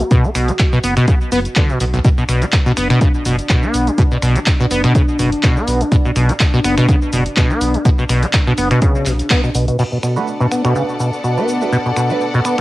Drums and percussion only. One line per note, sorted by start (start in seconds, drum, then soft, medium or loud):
0.00 shaker soft
0.11 kick loud
0.11 closed hi-hat medium
0.11 shaker soft
0.24 shaker soft
0.35 finger snap medium
0.35 open hi-hat loud
0.35 shaker medium
0.48 closed hi-hat soft
0.48 shaker soft
0.59 kick loud
0.59 clap loud
0.59 closed hi-hat medium
0.59 shaker soft
0.73 shaker soft
0.84 open hi-hat loud
0.84 shaker medium
0.97 finger snap medium
0.97 closed hi-hat soft
0.97 shaker soft
1.08 kick loud
1.08 closed hi-hat medium
1.08 shaker soft
1.21 shaker soft
1.32 open hi-hat loud
1.32 shaker medium
1.45 closed hi-hat soft
1.45 shaker soft
1.56 kick loud
1.56 clap loud
1.56 closed hi-hat medium
1.56 shaker soft
1.69 shaker soft
1.80 open hi-hat loud
1.80 shaker medium
1.94 closed hi-hat soft
1.94 shaker soft
2.05 kick loud
2.05 closed hi-hat medium
2.05 shaker soft
2.18 shaker soft
2.29 finger snap medium
2.29 open hi-hat loud
2.29 shaker medium
2.42 closed hi-hat medium
2.42 shaker soft
2.52 kick loud
2.52 clap loud
2.52 closed hi-hat medium
2.52 shaker soft
2.66 shaker soft
2.77 finger snap medium
2.77 open hi-hat loud
2.77 shaker medium
2.90 finger snap medium
2.90 closed hi-hat medium
2.90 shaker soft
3.01 kick loud
3.01 closed hi-hat medium
3.01 shaker soft
3.15 shaker soft
3.26 open hi-hat loud
3.26 shaker medium
3.39 closed hi-hat medium
3.39 shaker soft
3.49 kick loud
3.49 clap loud
3.49 closed hi-hat medium
3.49 shaker soft
3.63 shaker soft
3.74 open hi-hat loud
3.74 shaker medium
3.87 closed hi-hat soft
3.87 shaker soft
3.98 kick loud
3.98 closed hi-hat medium
3.98 shaker soft
4.11 shaker soft
4.22 finger snap medium
4.22 open hi-hat loud
4.22 shaker medium
4.36 closed hi-hat medium
4.36 shaker soft
4.46 kick loud
4.46 clap loud
4.46 closed hi-hat medium
4.46 shaker soft
4.60 shaker soft
4.71 open hi-hat loud
4.71 shaker medium
4.84 finger snap medium
4.84 closed hi-hat medium
4.84 shaker soft
4.95 kick loud
4.95 closed hi-hat medium
4.95 shaker soft
5.08 shaker soft
5.19 open hi-hat loud
5.19 shaker medium
5.32 closed hi-hat medium
5.32 shaker soft
5.43 kick loud
5.43 clap loud
5.43 closed hi-hat medium
5.43 shaker soft
5.57 shaker soft
5.67 open hi-hat loud
5.67 shaker medium
5.81 closed hi-hat soft
5.81 shaker soft
5.92 kick loud
5.92 closed hi-hat medium
5.92 shaker soft
6.05 shaker soft
6.16 finger snap medium
6.16 open hi-hat loud
6.16 shaker medium
6.29 closed hi-hat medium
6.29 shaker soft
6.40 kick loud
6.40 clap loud
6.40 closed hi-hat medium
6.40 shaker soft
6.53 shaker soft
6.64 finger snap medium
6.64 open hi-hat loud
6.64 shaker medium
6.78 finger snap medium
6.78 closed hi-hat medium
6.78 shaker soft
6.89 kick loud
6.89 closed hi-hat medium
6.89 shaker soft
7.02 shaker soft
7.13 open hi-hat loud
7.13 shaker medium
7.26 closed hi-hat medium
7.26 shaker soft
7.36 kick loud
7.36 clap loud
7.36 closed hi-hat medium
7.36 shaker soft
7.50 shaker soft
7.61 open hi-hat loud
7.61 shaker medium
7.74 closed hi-hat medium
7.74 shaker soft
7.85 kick loud
7.85 closed hi-hat medium
7.85 shaker soft
7.98 shaker soft
8.09 finger snap medium
8.09 open hi-hat loud
8.09 shaker medium
8.23 closed hi-hat medium
8.23 shaker soft
8.33 kick loud
8.33 clap loud
8.33 closed hi-hat medium
8.33 shaker soft
8.47 shaker soft
8.58 open hi-hat loud
8.58 shaker medium
8.71 finger snap medium
8.71 closed hi-hat medium
8.71 shaker soft
8.82 kick loud
8.82 closed hi-hat medium
8.82 shaker soft
8.95 shaker soft
9.06 clap soft
9.06 open hi-hat loud
9.06 shaker medium
9.19 closed hi-hat medium
9.19 shaker soft
9.30 kick loud
9.30 clap loud
9.30 closed hi-hat medium
9.30 shaker soft
9.44 shaker soft
9.55 open hi-hat loud
9.55 shaker medium
9.68 closed hi-hat medium
9.68 shaker soft
9.79 crash medium
9.79 shaker soft
9.92 shaker soft
10.03 finger snap medium
10.03 shaker medium
10.16 shaker soft
10.27 shaker soft
10.41 shaker soft
10.52 finger snap medium
10.52 shaker medium
10.65 finger snap medium
10.65 shaker soft
10.76 shaker soft
10.89 shaker soft
11.00 shaker medium
11.13 shaker soft
11.24 shaker soft
11.37 shaker soft
11.48 shaker medium
11.61 shaker soft
11.72 shaker soft
11.86 shaker soft
11.97 finger snap medium
11.97 shaker medium
12.10 shaker soft
12.21 shaker soft
12.34 shaker soft
12.45 finger snap medium
12.45 shaker medium